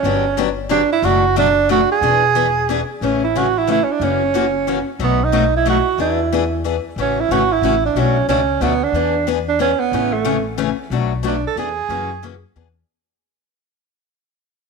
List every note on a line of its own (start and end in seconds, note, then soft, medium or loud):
0.00 0.82 G1 medium
0.00 0.44 C#4 medium
0.04 0.24 D3 medium
0.04 0.24 F#3 medium
0.04 0.24 B3 medium
0.04 0.24 D4 medium
0.04 0.24 G4 medium
0.37 0.47 D3 medium
0.37 0.48 F#3 medium
0.37 0.48 B3 medium
0.37 0.48 D4 loud
0.37 0.48 G4 medium
0.69 0.80 D3 medium
0.69 0.80 F#3 medium
0.69 0.80 B3 medium
0.69 0.81 D4 medium
0.69 0.89 D4 loud
0.69 0.81 G4 medium
0.93 1.06 E4 medium
1.02 1.82 F#1 loud
1.02 1.23 B2 medium
1.02 1.23 F#3 medium
1.02 1.23 A3 medium
1.02 1.24 D4 medium
1.02 1.24 F#4 medium
1.02 1.37 F#4 loud
1.36 1.47 B2 medium
1.36 1.47 F#3 loud
1.36 1.47 A3 medium
1.36 1.47 D4 medium
1.36 1.68 D4 loud
1.36 1.47 F#4 loud
1.69 1.80 B2 medium
1.69 1.80 F#3 medium
1.69 1.80 A3 medium
1.69 1.80 D4 loud
1.69 1.80 F#4 medium
1.69 1.88 F#4 loud
1.92 2.85 G#4 loud
2.01 2.81 E1 medium
2.01 2.22 E3 medium
2.01 2.22 B3 medium
2.01 2.23 D4 medium
2.01 2.23 G#4 medium
2.35 2.46 E3 medium
2.35 2.46 B3 medium
2.35 2.46 D4 medium
2.35 2.46 G#4 medium
2.69 2.79 E3 medium
2.69 2.80 B3 medium
2.69 2.80 D4 medium
2.69 2.80 G#4 medium
3.01 3.81 A1 medium
3.01 3.22 C#3 medium
3.01 3.22 E3 medium
3.01 3.22 A3 medium
3.01 3.20 C#4 medium
3.01 3.22 C#4 medium
3.01 3.22 G#4 medium
3.24 3.39 E4 medium
3.35 3.46 C#3 medium
3.35 3.46 E3 medium
3.35 3.46 A3 medium
3.35 3.46 C#4 medium
3.35 3.59 F#4 loud
3.35 3.46 G#4 medium
3.58 3.69 E4 medium
3.67 3.78 C#3 medium
3.67 3.78 E3 medium
3.67 3.79 A3 medium
3.67 3.79 C#4 medium
3.67 3.79 G#4 medium
3.72 3.85 E4 loud
3.84 3.93 C#4 medium
3.92 4.05 D4 medium
4.00 4.79 F#1 medium
4.00 4.21 C#3 medium
4.00 4.21 E3 medium
4.00 4.21 A#3 medium
4.00 4.21 C#4 medium
4.00 4.88 C#4 medium
4.00 4.21 F#4 medium
4.34 4.44 C#3 medium
4.34 4.45 E3 medium
4.34 4.45 A#3 medium
4.34 4.45 C#4 medium
4.34 4.45 F#4 medium
4.67 4.77 C#3 medium
4.67 4.78 E3 medium
4.67 4.78 A#3 medium
4.67 4.78 C#4 medium
4.67 4.78 F#4 medium
4.99 5.78 B1 medium
4.99 5.20 B2 medium
4.99 5.20 F#3 medium
4.99 5.20 A3 medium
4.99 5.20 D#4 medium
4.99 5.20 F#4 medium
5.04 5.26 B3 medium
5.24 5.55 D#4 medium
5.32 5.43 B2 medium
5.32 5.43 F#3 medium
5.32 5.43 A3 medium
5.32 5.43 D#4 medium
5.32 5.43 F#4 medium
5.57 5.67 E4 medium
5.65 5.76 B2 medium
5.65 5.76 F#3 medium
5.65 5.76 A3 medium
5.65 5.76 D#4 medium
5.65 5.77 F#4 medium
5.65 5.98 F#4 medium
5.98 6.77 E2 medium
5.98 6.18 E3 medium
5.98 6.19 B3 medium
5.98 6.19 D4 medium
5.98 6.62 E4 medium
5.98 6.19 G#4 medium
6.32 6.43 E3 medium
6.32 6.43 B3 medium
6.32 6.43 D4 medium
6.32 6.43 G#4 loud
6.64 6.75 E3 medium
6.64 6.75 B3 medium
6.64 6.75 D4 medium
6.64 6.76 G#4 medium
6.96 7.23 A1 medium
6.96 7.17 C#3 medium
6.96 7.18 E3 medium
6.96 7.18 A3 medium
6.96 7.18 C#4 medium
6.96 7.18 F#4 medium
7.01 7.22 C#4 medium
7.20 7.33 E4 medium
7.29 7.57 G#1 medium
7.29 7.41 C#3 medium
7.29 7.41 E3 medium
7.29 7.42 A3 medium
7.29 7.42 C#4 medium
7.29 7.42 F#4 medium
7.29 7.54 F#4 medium
7.52 7.84 E4 loud
7.62 7.90 A1 medium
7.62 7.74 C#3 medium
7.62 7.74 E3 medium
7.62 7.74 A3 medium
7.62 7.74 C#4 medium
7.62 7.74 F#4 medium
7.86 8.00 D4 medium
7.95 8.21 B1 medium
7.95 8.16 B2 medium
7.95 8.16 F#3 medium
7.95 8.16 A3 medium
7.95 8.16 D4 medium
7.95 8.16 F#4 medium
7.99 8.28 C#4 medium
8.28 8.56 C#2 medium
8.28 8.39 B2 medium
8.28 8.39 F#3 medium
8.28 8.39 A3 medium
8.28 8.64 C#4 medium
8.28 8.40 D4 loud
8.28 8.40 F#4 loud
8.61 8.89 D2 medium
8.61 8.72 B2 medium
8.61 8.72 F#3 medium
8.61 8.72 A3 medium
8.61 8.85 B3 medium
8.61 8.72 D4 medium
8.61 8.73 F#4 medium
8.83 9.28 D4 medium
8.92 9.72 E2 medium
8.92 9.14 E3 medium
8.92 9.14 B3 medium
8.92 9.15 D4 medium
8.92 9.15 G#4 medium
9.27 9.38 E3 medium
9.27 9.38 B3 medium
9.27 9.38 D4 medium
9.27 9.38 G#4 medium
9.49 9.60 D4 medium
9.59 9.70 E3 medium
9.59 9.70 B3 medium
9.59 9.81 C#4 medium
9.59 9.71 D4 medium
9.59 9.71 G#4 medium
9.80 10.14 B3 medium
9.92 10.71 A1 medium
9.92 10.13 C#3 medium
9.92 10.13 E3 medium
9.92 10.13 A3 medium
9.92 10.13 C#4 medium
9.92 10.14 G#4 medium
10.13 10.45 A3 medium
10.25 10.36 C#3 medium
10.25 10.36 E3 medium
10.25 10.36 A3 medium
10.25 10.36 C#4 medium
10.25 10.36 G#4 medium
10.58 10.69 C#3 medium
10.58 10.69 E3 medium
10.58 10.69 A3 medium
10.58 10.69 C#4 medium
10.58 10.69 G#4 medium
10.90 11.43 B1 medium
10.90 11.11 B2 medium
10.90 11.11 F#3 medium
10.90 11.11 A3 medium
10.90 11.12 D4 medium
10.90 11.12 F#4 medium
11.23 11.34 B2 medium
11.23 11.34 F#3 medium
11.23 11.35 A3 medium
11.23 11.35 D4 medium
11.23 11.44 D4 medium
11.23 11.35 F#4 medium
11.47 11.58 A4 medium
11.56 11.83 E2 medium
11.56 11.68 E3 medium
11.56 11.68 B3 medium
11.56 11.68 D4 medium
11.56 11.68 G#4 medium
11.56 12.53 G#4 medium
11.89 12.42 F#2 medium
11.89 12.10 C#3 medium
11.89 12.10 E3 medium
11.89 12.10 A#3 medium
11.89 12.10 C#4 medium
11.89 12.10 F#4 medium
12.22 12.33 C#3 medium
12.22 12.34 E3 medium
12.22 12.34 A#3 medium
12.22 12.34 C#4 medium
12.22 12.34 F#4 medium
12.56 12.82 E2 medium
12.56 12.66 E3 medium
12.56 12.67 B3 medium
12.56 12.67 D4 medium
12.56 12.67 G#4 medium